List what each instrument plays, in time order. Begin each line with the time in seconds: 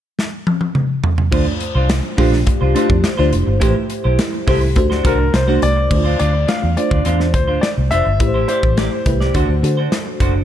0.19 snare
0.47 high tom
0.61 high tom
0.75 mid tom
1.04 floor tom
1.18 floor tom
1.31 fingered electric bass D2, fm electric piano A3 D4 F4 C5, clean electric guitar D4 F4 C5, kick, crash
1.46 muted clean electric guitar stroke
1.60 muted clean electric guitar stroke, closed hi-hat
1.75 fingered electric bass C2, clean electric guitar D4 F4 C5
1.89 snare, closed hi-hat
2.04 muted clean electric guitar stroke
2.17 fingered electric bass A#1, fm electric piano A3 D4 F4 G4, clean electric guitar D4 F4 C5, kick, open hi-hat
2.32 muted clean electric guitar stroke, snare
2.46 muted clean electric guitar stroke, kick, closed hi-hat
2.61 fingered electric bass C2, clean electric guitar D4 F4 C5
2.75 fm electric piano A3 D4 E4 C5, clean electric guitar D4 F4 C5, closed hi-hat
2.82 fm electric piano F4
2.90 fingered electric bass F2, muted clean electric guitar stroke, kick
3.04 muted clean electric guitar stroke, snare, closed hi-hat
3.17 fingered electric bass D2, fm electric piano A3 D4 F4 C5, clean electric guitar D4 F4 C5
3.32 fingered electric bass F1, muted clean electric guitar stroke, closed hi-hat
3.47 fingered electric bass G1, muted clean electric guitar stroke
3.60 fingered electric bass A1, fm electric piano A3 E4 G4 B4, clean electric guitar E4 G4 C5, kick, closed hi-hat
3.68 fm electric piano C5
3.75 muted clean electric guitar stroke
3.90 muted clean electric guitar stroke, closed hi-hat
4.04 fingered electric bass B1, clean electric guitar E4 G4 C5
4.19 snare, closed hi-hat
4.33 muted clean electric guitar stroke
4.47 fingered electric bass C2, fm electric piano A3 E4 G4 C5, clean electric guitar E4 G4 C5, kick, open hi-hat
4.61 muted clean electric guitar stroke
4.75 fingered electric bass D2, fm electric piano A3 D4 F#4 C5, muted clean electric guitar stroke, kick, closed hi-hat
4.90 clean electric guitar D4 F#4 C5, snare
5.04 fingered electric bass C2, fm electric piano A3 D4 F#4 C5, clean electric guitar D4 F#4 C5, grand piano A#4, kick, closed hi-hat
5.19 muted clean electric guitar stroke
5.32 fingered electric bass C2, grand piano C5, muted clean electric guitar stroke, snare, closed hi-hat
5.47 fm electric piano A3 D4 F#4 C5, clean electric guitar D4 F#4 C5
5.62 fingered electric bass C2, grand piano D5, muted clean electric guitar stroke, closed hi-hat
5.76 muted clean electric guitar stroke
5.91 fingered electric bass D2, fm electric piano A3 D4 E4 C5, muted clean electric guitar stroke, kick, crash
5.98 fm electric piano F4
6.04 clean electric guitar D4 F4 C5
6.19 fingered electric bass D2, clean electric guitar D4 F4 D5, grand piano D5, closed hi-hat
6.33 muted clean electric guitar stroke
6.47 fm electric piano A3 D4 F4 C5, clean electric guitar D4 F4 D5, grand piano F5, snare, closed hi-hat
6.62 fingered electric bass E2, muted clean electric guitar stroke
6.76 fm electric piano A3 D4 F4 C5, grand piano D5, muted clean electric guitar stroke, closed hi-hat
6.90 fingered electric bass D2, clean electric guitar D4 F4 D5, kick
7.05 fingered electric bass E2, clean electric guitar D4 F4 C5, closed hi-hat
7.19 muted clean electric guitar stroke, snare
7.33 fingered electric bass D2, grand piano C5, muted clean electric guitar stroke, kick, closed hi-hat
7.48 clean electric guitar D4 F4 C5
7.61 grand piano D5, muted clean electric guitar stroke, snare, closed hi-hat
7.77 fingered electric bass C2, muted clean electric guitar stroke
7.91 fingered electric bass F1, clean electric guitar D4 F4 C5, grand piano E5, closed hi-hat
8.06 fingered electric bass G1, muted clean electric guitar stroke
8.20 fingered electric bass A1, fm electric piano A3 E4 G4 B4, muted clean electric guitar stroke, kick, closed hi-hat
8.27 fm electric piano C5
8.34 clean electric guitar E4 G4 C5
8.48 clean electric guitar E4 G4 D5, grand piano C5, closed hi-hat
8.63 fingered electric bass A1, muted clean electric guitar stroke, kick
8.76 fm electric piano A3 E4 G4 C5, clean electric guitar E4 G4 D5, snare, closed hi-hat
8.92 muted clean electric guitar stroke
9.06 fingered electric bass C2, fm electric piano A3 E4 G4 B4, muted clean electric guitar stroke, kick, closed hi-hat
9.21 clean electric guitar E4 G4 D5, snare
9.34 fingered electric bass D2, fm electric piano A3 D4 F#4 C5, clean electric guitar D4 F#4 C5, kick, closed hi-hat
9.49 fingered electric bass D2, muted clean electric guitar stroke
9.62 fingered electric bass D3, fm electric piano A3 D4 F#4 A4, muted clean electric guitar stroke, closed hi-hat
9.77 clean electric guitar D4 F#4 C5
9.92 muted clean electric guitar stroke, snare, closed hi-hat
10.06 muted clean electric guitar stroke
10.20 fingered electric bass F#1, clean electric guitar D4 F#4 C5, kick, closed hi-hat
10.35 muted clean electric guitar stroke